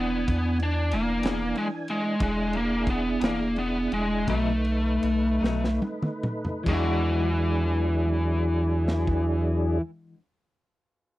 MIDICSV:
0, 0, Header, 1, 6, 480
1, 0, Start_track
1, 0, Tempo, 647249
1, 1637, Time_signature, 12, 3, 24, 8
1, 2131, Tempo, 701754
1, 3091, Tempo, 750000
1, 3571, Tempo, 792602
1, 4051, Tempo, 846262
1, 4531, Tempo, 875912
1, 7009, End_track
2, 0, Start_track
2, 0, Title_t, "Tonewheel organ"
2, 0, Program_c, 0, 16
2, 0, Note_on_c, 0, 52, 70
2, 0, Note_on_c, 0, 62, 76
2, 0, Note_on_c, 0, 80, 75
2, 1603, Note_off_c, 0, 80, 0
2, 1605, Note_off_c, 0, 62, 0
2, 1606, Note_off_c, 0, 52, 0
2, 1631, Note_on_c, 0, 68, 72
2, 1634, Note_on_c, 0, 64, 76
2, 1635, Note_on_c, 0, 62, 75
2, 3074, Note_off_c, 0, 68, 0
2, 3075, Note_off_c, 0, 64, 0
2, 3076, Note_off_c, 0, 62, 0
2, 3085, Note_on_c, 0, 71, 63
2, 3089, Note_on_c, 0, 57, 65
2, 3091, Note_on_c, 0, 63, 60
2, 4515, Note_off_c, 0, 71, 0
2, 4517, Note_off_c, 0, 57, 0
2, 4518, Note_off_c, 0, 63, 0
2, 4520, Note_on_c, 0, 62, 74
2, 4522, Note_on_c, 0, 54, 73
2, 4526, Note_on_c, 0, 68, 72
2, 6236, Note_off_c, 0, 62, 0
2, 6238, Note_off_c, 0, 54, 0
2, 6242, Note_off_c, 0, 68, 0
2, 7009, End_track
3, 0, Start_track
3, 0, Title_t, "Clean electric guitar"
3, 0, Program_c, 1, 27
3, 918, Note_on_c, 1, 68, 62
3, 924, Note_on_c, 1, 62, 61
3, 930, Note_on_c, 1, 59, 59
3, 935, Note_on_c, 1, 52, 52
3, 1060, Note_off_c, 1, 68, 0
3, 1063, Note_off_c, 1, 62, 0
3, 1066, Note_off_c, 1, 59, 0
3, 1069, Note_off_c, 1, 52, 0
3, 2357, Note_on_c, 1, 68, 61
3, 2365, Note_on_c, 1, 62, 61
3, 2370, Note_on_c, 1, 59, 53
3, 2371, Note_on_c, 1, 52, 57
3, 2502, Note_off_c, 1, 68, 0
3, 2506, Note_off_c, 1, 62, 0
3, 2509, Note_off_c, 1, 52, 0
3, 2509, Note_off_c, 1, 59, 0
3, 3088, Note_on_c, 1, 47, 68
3, 3095, Note_on_c, 1, 54, 79
3, 3095, Note_on_c, 1, 57, 77
3, 3102, Note_on_c, 1, 63, 84
3, 3231, Note_off_c, 1, 47, 0
3, 3234, Note_off_c, 1, 54, 0
3, 3234, Note_off_c, 1, 57, 0
3, 3238, Note_off_c, 1, 63, 0
3, 3800, Note_on_c, 1, 63, 73
3, 3807, Note_on_c, 1, 57, 69
3, 3812, Note_on_c, 1, 54, 72
3, 3817, Note_on_c, 1, 47, 58
3, 3949, Note_off_c, 1, 63, 0
3, 3952, Note_off_c, 1, 57, 0
3, 3955, Note_off_c, 1, 54, 0
3, 3957, Note_off_c, 1, 47, 0
3, 4515, Note_on_c, 1, 52, 74
3, 4536, Note_on_c, 1, 56, 81
3, 4553, Note_on_c, 1, 62, 91
3, 4568, Note_on_c, 1, 66, 94
3, 6433, Note_off_c, 1, 52, 0
3, 6454, Note_off_c, 1, 56, 0
3, 6471, Note_off_c, 1, 62, 0
3, 6486, Note_off_c, 1, 66, 0
3, 7009, End_track
4, 0, Start_track
4, 0, Title_t, "Lead electric guitar"
4, 0, Program_c, 2, 29
4, 0, Note_on_c, 2, 59, 95
4, 422, Note_off_c, 2, 59, 0
4, 467, Note_on_c, 2, 62, 99
4, 691, Note_on_c, 2, 58, 94
4, 699, Note_off_c, 2, 62, 0
4, 1167, Note_off_c, 2, 58, 0
4, 1170, Note_on_c, 2, 56, 88
4, 1232, Note_off_c, 2, 56, 0
4, 1411, Note_on_c, 2, 56, 97
4, 1629, Note_off_c, 2, 56, 0
4, 1651, Note_on_c, 2, 56, 90
4, 1896, Note_off_c, 2, 56, 0
4, 1904, Note_on_c, 2, 58, 95
4, 2147, Note_off_c, 2, 58, 0
4, 2149, Note_on_c, 2, 59, 89
4, 2358, Note_off_c, 2, 59, 0
4, 2383, Note_on_c, 2, 58, 75
4, 2614, Note_off_c, 2, 58, 0
4, 2616, Note_on_c, 2, 59, 93
4, 2835, Note_off_c, 2, 59, 0
4, 2857, Note_on_c, 2, 56, 74
4, 3081, Note_off_c, 2, 56, 0
4, 3102, Note_on_c, 2, 57, 73
4, 4032, Note_off_c, 2, 57, 0
4, 4542, Note_on_c, 2, 52, 83
4, 6254, Note_off_c, 2, 52, 0
4, 7009, End_track
5, 0, Start_track
5, 0, Title_t, "Sub bass"
5, 0, Program_c, 3, 38
5, 0, Note_on_c, 3, 28, 86
5, 190, Note_off_c, 3, 28, 0
5, 208, Note_on_c, 3, 40, 96
5, 687, Note_on_c, 3, 28, 108
5, 698, Note_off_c, 3, 40, 0
5, 901, Note_off_c, 3, 28, 0
5, 915, Note_on_c, 3, 28, 90
5, 1135, Note_off_c, 3, 28, 0
5, 1635, Note_on_c, 3, 28, 98
5, 2336, Note_off_c, 3, 28, 0
5, 2364, Note_on_c, 3, 28, 88
5, 2816, Note_off_c, 3, 28, 0
5, 2846, Note_on_c, 3, 28, 90
5, 3072, Note_off_c, 3, 28, 0
5, 3091, Note_on_c, 3, 35, 105
5, 3545, Note_off_c, 3, 35, 0
5, 3575, Note_on_c, 3, 35, 106
5, 3791, Note_off_c, 3, 35, 0
5, 3811, Note_on_c, 3, 35, 82
5, 4034, Note_off_c, 3, 35, 0
5, 4531, Note_on_c, 3, 40, 82
5, 6242, Note_off_c, 3, 40, 0
5, 7009, End_track
6, 0, Start_track
6, 0, Title_t, "Drums"
6, 207, Note_on_c, 9, 36, 84
6, 207, Note_on_c, 9, 51, 77
6, 281, Note_off_c, 9, 36, 0
6, 282, Note_off_c, 9, 51, 0
6, 442, Note_on_c, 9, 51, 59
6, 516, Note_off_c, 9, 51, 0
6, 677, Note_on_c, 9, 51, 69
6, 752, Note_off_c, 9, 51, 0
6, 912, Note_on_c, 9, 51, 82
6, 932, Note_on_c, 9, 38, 107
6, 987, Note_off_c, 9, 51, 0
6, 1006, Note_off_c, 9, 38, 0
6, 1153, Note_on_c, 9, 51, 64
6, 1227, Note_off_c, 9, 51, 0
6, 1394, Note_on_c, 9, 51, 64
6, 1468, Note_off_c, 9, 51, 0
6, 1632, Note_on_c, 9, 51, 86
6, 1634, Note_on_c, 9, 36, 107
6, 1706, Note_off_c, 9, 51, 0
6, 1708, Note_off_c, 9, 36, 0
6, 1877, Note_on_c, 9, 51, 65
6, 1951, Note_off_c, 9, 51, 0
6, 2126, Note_on_c, 9, 51, 57
6, 2128, Note_on_c, 9, 36, 75
6, 2194, Note_off_c, 9, 51, 0
6, 2196, Note_off_c, 9, 36, 0
6, 2363, Note_on_c, 9, 51, 89
6, 2381, Note_on_c, 9, 38, 113
6, 2431, Note_off_c, 9, 51, 0
6, 2449, Note_off_c, 9, 38, 0
6, 2602, Note_on_c, 9, 51, 59
6, 2670, Note_off_c, 9, 51, 0
6, 2844, Note_on_c, 9, 51, 61
6, 2913, Note_off_c, 9, 51, 0
6, 3090, Note_on_c, 9, 36, 75
6, 3090, Note_on_c, 9, 51, 77
6, 3154, Note_off_c, 9, 36, 0
6, 3154, Note_off_c, 9, 51, 0
6, 3326, Note_on_c, 9, 51, 59
6, 3390, Note_off_c, 9, 51, 0
6, 3570, Note_on_c, 9, 51, 65
6, 3631, Note_off_c, 9, 51, 0
6, 3822, Note_on_c, 9, 38, 63
6, 3883, Note_off_c, 9, 38, 0
6, 3944, Note_on_c, 9, 38, 58
6, 4004, Note_off_c, 9, 38, 0
6, 4051, Note_on_c, 9, 48, 73
6, 4108, Note_off_c, 9, 48, 0
6, 4167, Note_on_c, 9, 47, 77
6, 4224, Note_off_c, 9, 47, 0
6, 4286, Note_on_c, 9, 45, 93
6, 4343, Note_off_c, 9, 45, 0
6, 4407, Note_on_c, 9, 43, 82
6, 4463, Note_off_c, 9, 43, 0
6, 4528, Note_on_c, 9, 49, 91
6, 4530, Note_on_c, 9, 36, 111
6, 4583, Note_off_c, 9, 49, 0
6, 4584, Note_off_c, 9, 36, 0
6, 5745, Note_on_c, 9, 38, 58
6, 5799, Note_off_c, 9, 38, 0
6, 5851, Note_on_c, 9, 36, 69
6, 5905, Note_off_c, 9, 36, 0
6, 7009, End_track
0, 0, End_of_file